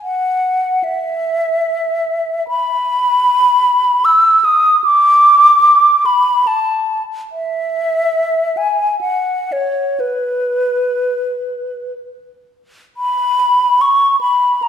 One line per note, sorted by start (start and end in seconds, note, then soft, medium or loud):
0.03 0.85 F#5 medium
0.84 2.47 E5 medium
2.48 4.06 B5 medium
4.05 4.46 E6 medium
4.45 4.84 D#6 medium
4.84 6.07 D6 medium
6.06 6.48 B5 medium
6.47 7.02 A5 medium
7.32 8.59 E5 medium
8.57 9.00 G#5 medium
9.01 9.54 F#5 medium
9.52 10.01 C#5 medium
10.00 11.93 B4 medium
12.97 13.83 B5 medium
13.81 14.20 C#6 medium
14.21 14.64 B5 medium
14.62 14.68 A#5 medium